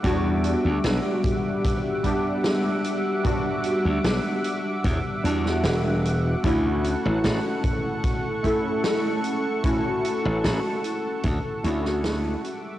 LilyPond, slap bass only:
\new Staff \with { instrumentName = "Slap bass" } { \clef bass \time 4/4 \key d \major \tempo 4 = 75 e,8 r16 d,16 b,,16 r2 r8. | r8. d,16 b,,16 r8. e,16 r16 e,8 e,,8. r16 | d,8 r16 a,,16 a,,16 r2 r8. | r8. a,,16 a,,16 r8. d,16 r16 d,8. r8. | }